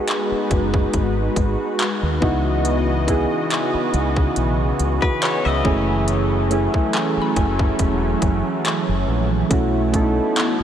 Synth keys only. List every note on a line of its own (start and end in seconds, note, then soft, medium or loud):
0.00 2.21 B3 medium
0.00 2.22 D#4 medium
0.00 2.24 F#4 medium
0.00 2.24 G#4 medium
2.21 2.91 B3 medium
2.21 2.92 D#4 medium
2.21 2.92 E4 medium
2.21 2.93 F#4 medium
3.07 4.28 B3 medium
3.07 4.29 D#4 medium
3.07 4.29 E4 medium
3.07 4.30 G#4 medium
5.03 5.22 F#4 medium
5.03 5.21 B4 medium
5.23 5.45 G#4 medium
5.23 5.44 C#5 medium
5.46 5.86 B4 medium
5.46 5.86 E5 medium
5.64 6.34 A3 medium
5.64 6.35 C#4 medium
5.64 6.35 E4 medium
5.64 6.36 G#4 medium
6.49 7.71 A3 medium
6.49 7.71 C#4 medium
6.49 7.72 E4 medium
6.49 7.73 G#4 medium
9.49 9.81 A3 medium
9.49 9.82 C#4 medium
9.49 9.82 E4 medium
9.49 9.83 F#4 medium
9.92 10.63 A3 medium
9.92 10.63 C#4 medium
9.92 10.01 D#4 medium
9.92 10.63 A4 medium
10.01 10.63 E4 medium